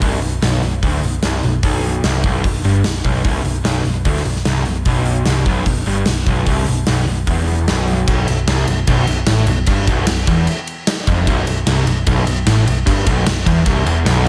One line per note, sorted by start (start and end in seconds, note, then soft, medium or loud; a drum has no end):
0.01 0.20 C1 medium
0.01 0.21 C2 medium
0.01 kick loud
0.01 open hi-hat medium
0.22 0.41 B0 medium
0.22 0.38 B1 medium
0.22 open hi-hat soft
0.42 0.61 B0 medium
0.42 0.62 B1 medium
0.42 snare loud
0.42 open hi-hat medium
0.61 0.80 B0 medium
0.61 0.79 B1 medium
0.61 open hi-hat soft
0.83 1.01 D1 medium
0.83 1.02 D2 medium
0.83 kick loud
0.83 open hi-hat medium
1.01 1.21 B0 medium
1.01 1.19 B1 medium
1.01 open hi-hat soft
1.22 1.41 C1 medium
1.22 1.43 C2 medium
1.22 snare medium
1.22 open hi-hat medium
1.43 1.62 B0 medium
1.43 1.60 B1 medium
1.43 open hi-hat soft
1.63 2.01 B0 medium
1.63 2.03 B1 medium
1.63 kick loud
1.63 open hi-hat medium
1.84 open hi-hat soft
2.03 2.22 C1 medium
2.03 2.24 C2 medium
2.03 snare loud
2.03 open hi-hat medium
2.24 2.43 B0 medium
2.24 2.44 B1 loud
2.24 kick medium
2.24 open hi-hat medium
2.44 2.62 B0 medium
2.44 2.61 B1 medium
2.44 kick medium
2.44 open hi-hat medium
2.63 2.82 G1 medium
2.63 2.84 G2 loud
2.63 open hi-hat soft
2.84 3.03 B0 medium
2.84 snare loud
2.84 open hi-hat medium
3.04 3.23 B0 medium
3.04 3.24 B1 loud
3.04 kick medium
3.04 open hi-hat soft
3.25 3.43 C1 medium
3.25 3.44 C2 loud
3.25 kick loud
3.25 open hi-hat medium
3.44 3.63 B0 medium
3.44 3.61 B1 medium
3.44 open hi-hat soft
3.64 3.83 B0 medium
3.64 3.84 B1 medium
3.64 snare loud
3.64 open hi-hat medium
3.84 4.04 B0 medium
3.84 4.02 B1 medium
3.84 open hi-hat soft
4.05 4.23 D1 medium
4.05 4.25 D2 loud
4.05 kick loud
4.05 open hi-hat medium
4.16 snare soft
4.24 4.44 B0 medium
4.24 4.42 B1 medium
4.24 open hi-hat soft
4.36 snare soft
4.45 4.64 C1 medium
4.45 4.66 C2 medium
4.45 snare loud
4.45 open hi-hat medium
4.65 4.84 B0 medium
4.65 4.82 B1 medium
4.65 open hi-hat soft
4.85 5.23 B0 medium
4.85 5.26 B1 medium
4.85 kick medium
4.85 open hi-hat medium
5.05 open hi-hat soft
5.26 5.45 C1 medium
5.26 5.46 C2 medium
5.26 snare loud
5.26 open hi-hat medium
5.45 5.65 B0 medium
5.45 5.66 B1 loud
5.45 kick medium
5.45 open hi-hat soft
5.66 5.85 B0 medium
5.66 5.83 B1 medium
5.66 kick medium
5.66 open hi-hat medium
5.86 6.05 G1 medium
5.86 6.07 G2 loud
5.86 open hi-hat soft
6.06 6.25 B0 medium
6.06 6.23 B1 medium
6.06 snare loud
6.06 open hi-hat medium
6.26 6.45 B0 medium
6.26 6.47 B1 loud
6.26 kick medium
6.26 open hi-hat soft
6.46 6.65 C1 medium
6.46 6.67 C2 medium
6.46 kick loud
6.46 open hi-hat medium
6.66 6.86 B0 medium
6.66 6.84 B1 medium
6.66 open hi-hat medium
6.87 7.06 B0 loud
6.87 7.06 B1 loud
6.87 snare loud
6.87 open hi-hat medium
7.07 7.26 B0 medium
7.07 7.23 B1 medium
7.07 open hi-hat soft
7.27 7.65 E1 medium
7.27 7.67 E2 loud
7.27 kick loud
7.27 open hi-hat medium
7.48 open hi-hat soft
7.68 8.05 B0 medium
7.68 8.06 B1 medium
7.68 snare loud
7.68 open hi-hat medium
7.88 open hi-hat soft
8.07 8.26 B0 medium
8.07 8.27 B1 loud
8.07 kick loud
8.07 ride loud
8.27 8.46 B0 medium
8.27 8.44 B1 medium
8.27 ride medium
8.48 8.67 C1 loud
8.48 8.67 C2 medium
8.48 snare loud
8.48 ride loud
8.67 8.86 B0 medium
8.67 8.84 B1 medium
8.67 ride medium
8.87 9.06 B0 loud
8.87 9.06 B1 loud
8.87 kick loud
8.87 ride loud
9.07 9.26 B0 medium
9.07 9.24 B1 medium
9.07 ride medium
9.27 9.46 A1 medium
9.27 9.47 A2 loud
9.27 snare loud
9.27 ride loud
9.47 9.66 B0 medium
9.47 9.64 B1 medium
9.47 ride medium
9.66 9.86 G1 loud
9.66 9.87 G2 loud
9.66 kick loud
9.66 ride loud
9.87 10.06 B0 loud
9.87 10.07 B1 loud
9.87 kick loud
9.87 ride medium
10.07 10.26 B0 medium
10.07 10.24 B1 medium
10.07 snare loud
10.07 ride loud
10.27 10.46 E1 medium
10.27 10.47 E2 loud
10.27 kick loud
10.27 ride medium
10.47 ride loud
10.67 ride medium
10.87 snare loud
10.87 ride loud
11.07 11.26 F1 loud
11.07 11.27 F2 loud
11.07 kick medium
11.07 ride medium
11.27 11.46 B0 loud
11.27 11.46 B1 loud
11.27 kick loud
11.27 ride loud
11.47 11.65 B0 medium
11.47 11.63 B1 medium
11.47 ride medium
11.66 11.85 C1 loud
11.66 11.86 C2 loud
11.66 snare loud
11.66 ride loud
11.87 12.05 B0 medium
11.87 12.03 B1 medium
11.87 ride medium
12.07 12.25 B0 loud
12.07 12.25 B1 loud
12.07 kick loud
12.07 ride loud
12.26 12.45 B0 medium
12.26 12.43 B1 medium
12.26 ride medium
12.46 12.65 A1 loud
12.46 12.66 A2 loud
12.46 snare loud
12.46 ride loud
12.66 12.85 B0 medium
12.66 12.83 B1 medium
12.66 ride medium
12.86 13.05 G1 loud
12.86 13.05 G2 loud
12.86 kick loud
12.86 ride loud
13.06 13.25 B0 loud
13.06 13.25 B1 loud
13.06 kick loud
13.06 ride medium
13.26 13.45 B0 medium
13.26 13.42 B1 medium
13.26 snare loud
13.26 ride loud
13.45 13.65 E1 loud
13.45 13.65 E2 loud
13.45 kick loud
13.45 ride medium
13.65 13.85 C1 loud
13.65 13.85 C2 loud
13.65 kick loud
13.65 ride loud
13.86 14.04 E1 medium
13.86 14.05 E2 loud
13.86 ride medium
14.05 14.29 B0 medium
14.05 14.29 B1 loud
14.05 snare loud
14.05 ride loud